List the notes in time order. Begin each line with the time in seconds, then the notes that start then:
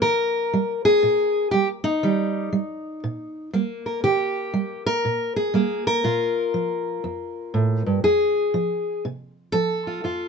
Already playing: A#3
0.02 D#3 A#4
0.54 G3
0.85 G#4
1.03 A#2
1.51 G3 G4
1.84 D#4
2.03 D#3 G3
2.53 G3
3.04 A#2
3.53 G3 A#3
3.86 A#4
4.04 D#3 G4
4.54 G3
4.86 A#4
5.05 A#2
5.36 G#4
5.54 G3 A#3
5.87 A#4
6.04 A#2 F4
6.54 F3
7.04 F2
7.54 A2
7.86 G2
8.04 F2 G#4
8.54 F3
9.05 C3
9.52 F3 A4
9.87 F4
10.04 F2 F4